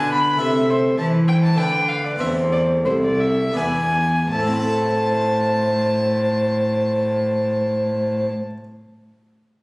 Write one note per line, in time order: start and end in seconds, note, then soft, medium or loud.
0.00 0.37 D3 medium
0.00 0.39 D3 medium
0.00 0.37 B3 medium
0.00 0.36 E4 medium
0.00 0.38 B4 medium
0.00 0.41 B4 medium
0.00 0.12 G#5 loud
0.13 0.40 B5 loud
0.36 1.52 A3 medium
0.36 1.53 E4 medium
0.36 1.53 C5 medium
0.40 0.97 C3 medium
0.40 0.94 C3 medium
0.40 0.97 A4 medium
0.40 0.72 E5 loud
0.70 0.98 C5 medium
0.98 1.54 E3 medium
0.98 1.59 E3 medium
0.98 1.59 C5 medium
0.98 1.06 A5 medium
1.28 1.34 G5 loud
1.44 1.59 A5 medium
1.54 2.19 D3 medium
1.54 2.15 A3 medium
1.54 2.17 D4 medium
1.54 2.18 B4 medium
1.54 2.21 B4 medium
1.54 1.90 G5 loud
1.59 2.16 D3 medium
1.88 2.04 F5 medium
2.05 2.12 D5 medium
2.16 2.87 E2 medium
2.16 3.50 A3 soft
2.16 3.50 C4 soft
2.16 3.51 C5 soft
2.16 2.86 C5 medium
2.16 2.28 E5 medium
2.21 2.82 E2 medium
2.52 2.60 D5 medium
2.85 3.55 C2 medium
2.85 3.52 C2 medium
2.85 3.55 A4 medium
2.85 2.92 C5 medium
3.04 3.22 D5 medium
3.21 3.57 E5 medium
3.51 4.27 B3 soft
3.51 4.28 D4 soft
3.51 4.29 B4 soft
3.51 3.64 B4 medium
3.55 4.30 E2 medium
3.55 4.28 E2 medium
3.55 4.31 G#5 medium
4.31 8.29 A2 medium
4.31 8.28 C5 medium
4.31 8.29 A5 medium
4.39 8.36 A3 medium
4.46 8.43 C4 medium
4.53 8.50 E4 medium
4.60 8.57 A4 medium
4.67 8.64 E5 medium